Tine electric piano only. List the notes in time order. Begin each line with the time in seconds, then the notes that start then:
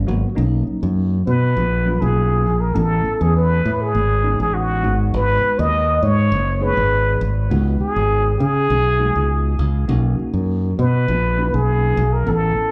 0.07 F#3 A#3 B3 F#4
0.35 F#3 A#3 C#4 D#4
1.85 F#3 A#3 C#4 F4
2.74 A3 B3 C#4 E4
4.23 G#3 B3 C#4 D#4
4.83 G#3 B3 D#4 F#4
6.61 G#3 B3 D#4 G#4
7.50 G#3 B3 D#4 F#4
8.99 G#3 B3 D#4 F#4
9.88 A#3 C#4 D#4 F#4
11.37 A#3 C#4 D#4 F#4
12.26 B3 C#4 E4 A4